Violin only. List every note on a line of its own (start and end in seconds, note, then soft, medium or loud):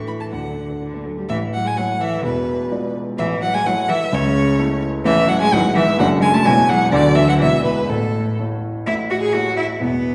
0.07 0.12 B5 medium
0.20 0.25 A5 medium
0.32 0.80 F#5 medium
1.29 1.37 E5 loud
1.54 1.68 F#5 loud
1.67 1.79 G#5 loud
1.77 2.03 F#5 loud
2.01 2.23 E5 loud
2.24 2.93 B4 medium
3.18 3.26 E5 loud
3.42 3.56 F#5 loud
3.54 3.68 G#5 loud
3.66 3.91 F#5 loud
3.90 4.16 E5 loud
4.15 4.84 C#5 loud
5.06 5.30 E5 loud
5.29 5.40 F#5 loud
5.41 5.55 G#5 loud
5.53 5.76 F#5 loud
5.76 5.99 E5 loud
6.00 6.08 F#5 loud
6.22 6.36 G#5 loud
6.34 6.47 A5 loud
6.46 6.71 G#5 loud
6.69 6.91 F#5 loud
6.92 7.17 D5 loud
7.16 7.28 E5 loud
7.29 7.34 F#5 loud
7.42 7.64 E5 loud
7.64 7.91 B4 loud
7.90 8.39 A4 loud
8.87 8.95 E5 loud
9.11 9.22 F#5 medium
9.23 9.36 G#5 medium
9.35 9.58 F#5 loud
9.58 9.66 E5 medium
9.81 10.15 B4 medium